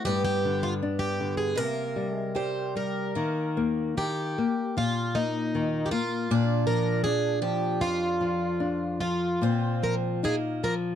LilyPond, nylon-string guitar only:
\new Staff \with { instrumentName = "Nylon-string guitar" } { \clef bass \time 2/4 \key g \phrygian \tempo 4 = 77 g,8 d8 d'8 d8 | c8 g8 g'8 g8 | \key ees \major ees8 bes8 ees8 bes8 | bes,8 bes8 ees8 bes8 |
bes,8 f8 d'8 f8 | f,8 f8 d'8 f8 | bes,8 f8 ees'8 f8 | }